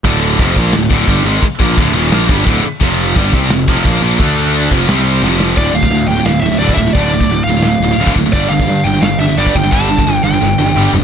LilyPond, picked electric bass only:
\new Staff \with { instrumentName = "Picked electric bass" } { \clef bass \time 4/4 \key d \minor \tempo 4 = 174 d,,4 f,,8 bes,,8 d,,8 d,,8 g,,8 gis,,8 | r8 bes,,8 d,,8 ees,,8 bes,,8 g,,8 d,,8 r8 | f,,4 g,,8 c,8 f,,8 f,,8 bes,,8 bes,,8 | d,4. f,,8 c,4 f,,4 |
d,,8 d,,8 d,8 d,,8 d,,8 d,,8 d,,8 d,,8 | d,,4 d,,8 d,,8 d,,8 d,,8 d,,8 d,,8 | g,,8 g,,8 g,8 g,,8 g,,8 g,,8 g,,8 g,,8 | g,,4 g,,8 g,,8 g,,8 g,,8 g,,8 g,,8 | }